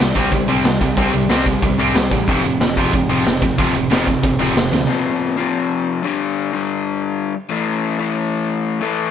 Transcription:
0.00 C2 C3 G3, snare
0.15 C2 C3 G3 C4, kick
0.32 C2 C3 G3, kick, open hi-hat
0.48 C2 C3 G3 C4
0.64 C2 C3 G3, snare, open hi-hat
0.80 C2 C3 G3, kick
0.97 C2 C3 G3 C4, kick, open hi-hat
1.13 C2 C3 G3
1.29 C2 C3 G3 C4, snare, open hi-hat
1.45 C3 G3, kick
1.62 C2 C3 G3, kick, open hi-hat
1.79 C2 C3 G3 C4
1.94 C2 C3 G3, snare, open hi-hat
2.11 A1 C3 G3, kick
2.27 F1 F2 C3 F3, kick, open hi-hat
2.44 F1 F2 C3
2.60 F1 F2 C3, snare, open hi-hat
2.77 F1 F2 C3 F3, kick
2.93 F1 F2 C3, kick, open hi-hat
3.09 F1 F2 C3 F3
3.26 F1 F2 C3, snare, open hi-hat
3.42 F1 F2 C3, kick
3.58 F1 F2 C3 F3, kick, open hi-hat
3.74 F1 F2 C3
3.91 F1 F2 C3 F3, snare, open hi-hat
4.07 F2 C3, kick
4.23 F1 F2 C3, kick, open hi-hat
4.39 F1 F2 C3 F3
4.55 F1 F2 C3, snare, open hi-hat
4.72 D2 F2 C3, snare
4.87 F2 C3 F3
5.37 F2 C3 F3
6.03 G2 D3 G3
6.53 G2 D3 G3
7.49 A2 E3 A3
7.99 A2 E3 A3
8.80 A2 E3 A3

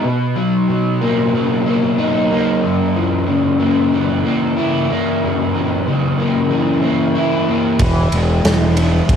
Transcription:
0.04 B2
0.35 F#3
0.69 B2
1.01 A#3
1.34 F#3
1.66 A#3
1.98 D#4
2.30 A#3
2.64 F#2
2.96 E3
3.27 C#3
3.59 A#3
3.92 E3
4.25 A#3
4.57 E4
4.91 A#3
5.23 F#2
5.55 E3
5.87 C#3
6.18 A#3
6.51 E3
6.83 A#3
7.15 E4
7.48 A#3
7.79 E1 E3, kick, ride
8.12 E1 G#3, ride
8.44 E1 E3, snare, ride
8.77 B3, ride
9.09 E1 G#3, kick, ride

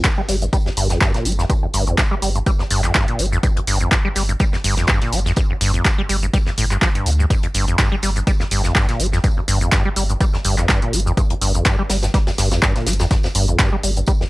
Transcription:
0.04 G2, kick, snare, clap, closed hi-hat, tambourine, shaker
0.18 G3
0.28 G1 G3, snare, open hi-hat, tambourine, shaker
0.42 G2, closed hi-hat, shaker
0.53 G3, kick, closed hi-hat, tambourine, shaker
0.66 F2, snare
0.77 G1 G2, open hi-hat, tambourine, shaker
0.90 F2, snare, closed hi-hat, shaker
1.01 G2, kick, snare, clap, tambourine, shaker
1.14 A#2, snare, closed hi-hat
1.25 G1 G3, open hi-hat, tambourine, shaker
1.32 closed hi-hat
1.39 F2, snare, shaker
1.50 G2, kick, closed hi-hat, tambourine, shaker
1.63 F2
1.73 G1 G2, open hi-hat, tambourine, shaker
1.87 F2, closed hi-hat, shaker
1.98 G2, kick, snare, clap, closed hi-hat, tambourine, shaker
2.11 G3
2.22 G1 G3, open hi-hat, tambourine, shaker
2.35 G2, closed hi-hat, shaker
2.46 G3, kick, closed hi-hat, tambourine, shaker
2.59 F2, snare
2.71 G1 G2, open hi-hat, tambourine, shaker
2.84 F2, clap, closed hi-hat, shaker
2.95 G2, kick, snare, clap, tambourine, shaker
3.08 A#2, closed hi-hat
3.19 G1 G3, open hi-hat, tambourine, shaker
3.26 closed hi-hat
3.32 F2, shaker
3.43 G2, kick, closed hi-hat, tambourine, shaker
3.56 F2, closed hi-hat
3.67 G1 G2, open hi-hat, tambourine, shaker
3.81 F2, closed hi-hat, shaker
3.91 kick, snare, clap, closed hi-hat, tambourine, shaker
4.05 G3
4.15 G1 G3, snare, open hi-hat, tambourine, shaker
4.29 G2, closed hi-hat, shaker
4.40 G3, kick, closed hi-hat, tambourine, shaker
4.53 F2, snare
4.64 G1 G2, open hi-hat, tambourine, shaker
4.77 F2, snare, closed hi-hat, shaker
4.87 G2, kick, snare, clap, tambourine, shaker
5.01 A#2, snare, closed hi-hat
5.12 G1 G3, open hi-hat, tambourine, shaker
5.19 closed hi-hat
5.26 F2, snare, shaker
5.36 G2, kick, closed hi-hat, tambourine, shaker
5.50 F2
5.61 G1 G2, open hi-hat, tambourine, shaker
5.74 F2, closed hi-hat, shaker
5.85 G2, kick, snare, clap, closed hi-hat, tambourine, shaker
5.98 G3
6.09 G1 G3, open hi-hat, tambourine, shaker
6.23 G2, closed hi-hat, shaker
6.33 G3, kick, closed hi-hat, tambourine, shaker
6.46 F2, snare
6.57 G1 A2, open hi-hat, tambourine, shaker
6.71 G2, clap, closed hi-hat, shaker
6.82 F3, kick, snare, clap, tambourine, shaker
6.95 G2, closed hi-hat
7.06 D2 C3, open hi-hat, tambourine, shaker
7.13 closed hi-hat
7.19 G2, shaker
7.30 G2, kick, closed hi-hat, tambourine, shaker
7.43 F2, closed hi-hat
7.54 G1 G2, open hi-hat, tambourine, shaker
7.68 F2, closed hi-hat, shaker
7.79 G2, kick, snare, clap, closed hi-hat, tambourine, shaker
7.92 G3
8.02 G1 G3, snare, open hi-hat, tambourine, shaker
8.16 G2, closed hi-hat, shaker
8.27 G3, kick, closed hi-hat, tambourine, shaker
8.40 F2, snare
8.51 G1 G2, open hi-hat, tambourine, shaker
8.64 F2, snare, closed hi-hat, shaker
8.75 G2, kick, snare, clap, tambourine, shaker
8.89 A#2, snare, closed hi-hat
9.00 G1 G3, open hi-hat, tambourine, shaker
9.06 closed hi-hat
9.12 F2, snare, shaker
9.24 G2, kick, closed hi-hat, tambourine, shaker
9.37 F2
9.48 G1 G2, open hi-hat, tambourine, shaker
9.61 F2, closed hi-hat, shaker
9.72 G2, kick, snare, clap, closed hi-hat, tambourine, shaker
9.85 G3
9.96 G1 G3, open hi-hat, tambourine, shaker
10.10 G2, closed hi-hat, shaker
10.21 G3, kick, closed hi-hat, tambourine, shaker
10.34 F2, snare
10.44 G1 G2, open hi-hat, tambourine, shaker
10.58 F2, clap, closed hi-hat, shaker
10.69 G2, kick, snare, clap, tambourine, shaker
10.82 A#2, closed hi-hat
10.93 G1 G3, open hi-hat, tambourine, shaker
11.00 closed hi-hat
11.06 F2, shaker
11.17 G2, kick, closed hi-hat, tambourine, shaker
11.30 F2, closed hi-hat
11.41 G1 G2, open hi-hat, tambourine, shaker
11.55 F2, closed hi-hat, shaker
11.65 G2, kick, snare, clap, closed hi-hat, tambourine, shaker
11.79 G3
11.90 G1 G3, snare, open hi-hat, tambourine, shaker
12.03 G2, snare, closed hi-hat, tambourine, shaker
12.14 G3, kick, snare, closed hi-hat, tambourine, shaker
12.27 F2, snare, tambourine
12.38 G1 G2, snare, open hi-hat, tambourine, shaker
12.51 F2, snare, closed hi-hat, tambourine, shaker
12.62 G2, kick, snare, clap, tambourine, shaker
12.76 A#2, snare, closed hi-hat
12.87 G1 G3, snare, open hi-hat, tambourine, shaker
12.93 closed hi-hat
12.99 F2, snare, tambourine, shaker
13.11 G2, kick, snare, closed hi-hat, tambourine, shaker
13.23 F2, snare, tambourine
13.35 G1 G2, open hi-hat, tambourine, shaker
13.48 F2, closed hi-hat, shaker
13.59 G2, kick, snare, clap, closed hi-hat, tambourine, shaker
13.73 G3
13.83 G1 G3, open hi-hat, tambourine, shaker
13.97 G2, closed hi-hat, shaker
14.06 G3, kick, closed hi-hat, tambourine, shaker
14.21 F2, snare

